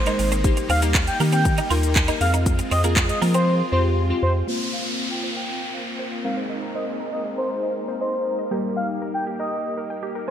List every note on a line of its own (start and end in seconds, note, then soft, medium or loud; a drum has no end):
0.00 0.42 C3 medium
0.00 0.42 D#3 medium
0.00 0.42 G#3 medium
0.00 0.40 A#3 medium
0.00 0.42 D#4 medium
0.00 0.30 C5 medium
0.06 0.34 G#3 medium
0.06 0.34 A#3 medium
0.06 0.34 C4 medium
0.06 0.34 D#4 medium
0.06 0.17 D#4 medium
0.06 0.34 A#4 medium
0.06 closed hi-hat medium
0.06 shaker medium
0.19 0.59 G#1 medium
0.19 muted clean electric guitar stroke soft
0.19 open hi-hat medium
0.19 shaker medium
0.32 0.42 C4 medium
0.32 closed hi-hat medium
0.32 shaker medium
0.44 2.19 G3 medium
0.44 0.72 A#3 loud
0.44 2.19 A#3 medium
0.44 2.19 D#4 medium
0.44 0.72 D#4 medium
0.44 0.72 G4 loud
0.44 kick loud
0.44 closed hi-hat medium
0.44 shaker medium
0.57 muted clean electric guitar stroke soft
0.57 closed hi-hat medium
0.57 shaker medium
0.69 1.10 D#2 medium
0.69 0.80 C4 medium
0.69 0.80 F5 loud
0.69 open hi-hat medium
0.69 shaker medium
0.82 1.09 A#3 medium
0.82 0.93 A#3 medium
0.82 1.09 D#4 medium
0.82 1.10 G4 medium
0.82 closed hi-hat medium
0.82 shaker medium
0.95 muted clean electric guitar stroke soft
0.95 kick loud
0.95 clap loud
0.95 closed hi-hat medium
0.95 shaker medium
1.07 1.18 G5 medium
1.07 closed hi-hat medium
1.07 shaker medium
1.20 1.60 D#3 loud
1.20 1.56 A#3 medium
1.20 1.31 A#3 medium
1.20 1.56 D#4 medium
1.20 1.57 G4 medium
1.20 open hi-hat medium
1.20 shaker medium
1.32 1.43 C4 medium
1.32 1.68 G5 medium
1.32 closed hi-hat soft
1.32 shaker medium
1.45 muted clean electric guitar stroke soft
1.45 kick loud
1.45 closed hi-hat medium
1.45 shaker medium
1.58 1.69 D#4 medium
1.58 closed hi-hat medium
1.58 shaker medium
1.70 2.11 D#2 loud
1.70 1.98 A#3 medium
1.70 1.98 D#4 medium
1.70 1.81 F4 medium
1.70 1.98 A#4 medium
1.70 open hi-hat medium
1.70 shaker medium
1.83 closed hi-hat medium
1.83 shaker medium
1.96 kick loud
1.96 clap loud
1.96 closed hi-hat medium
1.96 shaker medium
2.08 2.21 A#3 medium
2.08 2.19 D#4 medium
2.08 2.21 D#4 medium
2.08 2.21 A#4 medium
2.08 closed hi-hat medium
2.08 shaker medium
2.21 2.61 F2 medium
2.21 4.45 G#3 medium
2.21 4.45 C4 medium
2.21 2.71 C4 medium
2.21 4.45 F4 medium
2.21 2.71 F4 medium
2.21 2.72 G#4 medium
2.21 2.31 F5 medium
2.21 muted clean electric guitar stroke soft
2.21 open hi-hat medium
2.21 shaker medium
2.34 2.44 D#4 medium
2.34 closed hi-hat medium
2.34 shaker medium
2.46 kick loud
2.46 closed hi-hat medium
2.46 shaker medium
2.59 muted clean electric guitar stroke soft
2.59 closed hi-hat medium
2.59 shaker medium
2.71 3.12 F2 medium
2.71 2.82 C4 medium
2.71 2.81 D#5 medium
2.71 open hi-hat medium
2.71 shaker medium
2.84 2.95 A#3 medium
2.84 3.11 C4 medium
2.84 3.11 F4 medium
2.84 3.11 G#4 medium
2.84 closed hi-hat medium
2.84 shaker medium
2.96 muted clean electric guitar stroke soft
2.96 kick loud
2.96 clap loud
2.96 closed hi-hat medium
2.96 shaker medium
3.09 3.19 D#5 medium
3.09 closed hi-hat medium
3.09 shaker medium
3.22 3.62 F3 medium
3.22 3.32 A#3 medium
3.22 3.58 C4 medium
3.22 3.58 F4 medium
3.22 3.58 A#4 medium
3.22 open hi-hat medium
3.22 shaker medium
3.34 3.45 C4 medium
3.34 3.55 C5 medium
3.34 closed hi-hat soft
3.34 shaker medium
3.72 4.13 F2 medium
3.72 3.99 C4 medium
3.72 4.00 F4 medium
3.72 4.00 G4 medium
3.72 3.82 C5 medium
4.10 4.37 C4 medium
4.10 4.37 F4 medium
4.10 4.37 G4 medium
4.22 4.43 F2 medium
4.22 4.33 C5 medium
4.47 6.21 A#3 medium
4.47 8.47 A#3 medium
4.47 8.47 C4 medium
4.47 6.21 C4 medium
4.47 6.22 F4 medium
4.47 6.21 F4 medium
4.47 4.60 C5 medium
4.47 6.21 C5 medium
4.47 downlifter medium
4.73 4.83 F5 medium
4.98 5.10 F5 medium
5.11 5.21 G5 medium
5.24 5.35 C5 medium
5.36 5.48 F5 medium
5.36 5.72 G5 medium
5.74 5.86 F5 medium
5.99 6.11 C5 medium
6.12 6.23 F5 medium
6.24 8.22 G#3 medium
6.24 8.49 G#3 medium
6.24 8.22 C4 medium
6.24 10.24 D#4 medium
6.24 8.22 D#4 medium
6.24 8.49 A#4 medium
6.24 8.22 A#4 medium
6.24 6.35 F5 medium
6.24 6.36 A#5 medium
6.37 6.49 C5 medium
6.50 6.61 D#5 medium
6.62 6.74 A#5 medium
6.75 6.86 C5 medium
6.75 6.85 D#5 medium
6.87 6.99 D#5 medium
7.00 7.12 A#5 medium
7.13 7.23 D#5 medium
7.25 7.37 D#5 medium
7.38 7.73 C5 medium
7.38 7.50 A#5 medium
7.51 7.62 C5 medium
7.63 7.75 D#5 medium
7.88 8.00 C5 medium
8.01 8.36 C5 medium
8.01 8.12 D#5 medium
8.39 8.50 D#5 medium
8.51 10.24 G3 medium
8.51 10.26 A#3 medium
8.51 10.24 A#3 medium
8.51 10.24 D#4 medium
8.51 8.63 G4 medium
8.51 10.26 G4 medium
8.51 10.25 A#4 medium
8.76 8.87 F5 medium
9.02 9.13 A#4 medium
9.14 9.24 G5 medium
9.27 9.38 G4 medium
9.39 9.51 A#4 medium
9.39 9.75 D#5 medium
9.78 9.89 A#4 medium
9.90 10.02 G5 medium
10.03 10.14 G4 medium
10.15 10.27 A#4 medium
10.27 10.30 G#3 medium
10.27 10.30 C4 medium